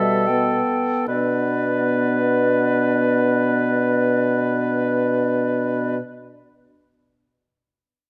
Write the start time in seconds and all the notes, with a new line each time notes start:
Already playing: B2 G3 A4 E5
0.27 B3 G5
1.08 B2 B3 D4 B4 D5